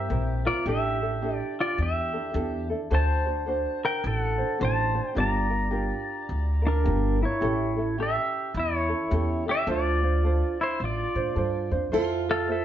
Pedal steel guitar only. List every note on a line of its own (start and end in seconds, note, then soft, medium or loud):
0.00 0.43 G4 medium
0.00 0.47 E5 loud
0.47 0.65 F4 medium
0.47 0.68 D5 medium
0.68 1.55 G4 medium
0.68 1.36 E5 loud
1.36 1.61 D5 loud
1.60 1.79 F4 medium
1.60 1.81 D5 medium
1.82 2.68 G4 medium
1.82 2.68 E5 medium
2.94 3.80 C5 medium
2.94 3.85 A5 loud
3.85 4.03 A#4 medium
3.85 4.06 G5 medium
4.07 4.58 A4 medium
4.07 4.64 F#5 medium
4.63 5.14 C5 medium
4.63 5.09 A5 medium
5.09 5.20 G5 medium
5.18 6.61 D5 medium
5.18 6.71 A#5 loud
6.67 7.18 D4 medium
6.67 7.24 A#4 medium
7.23 7.95 E4 medium
7.23 7.97 C#5 medium
8.00 8.52 G4 medium
8.00 8.58 E5 medium
8.57 9.44 E4 medium
8.57 9.51 C#5 medium
9.49 9.68 G4 medium
9.49 9.70 E5 medium
9.71 10.57 F4 medium
9.71 10.63 D5 medium
10.61 10.80 E4 medium
10.61 10.83 C5 medium
10.84 11.70 F4 medium
10.84 11.70 D5 medium
12.31 12.49 A4 medium
12.31 12.51 F5 medium
12.52 12.65 A4 medium
12.52 12.65 E5 medium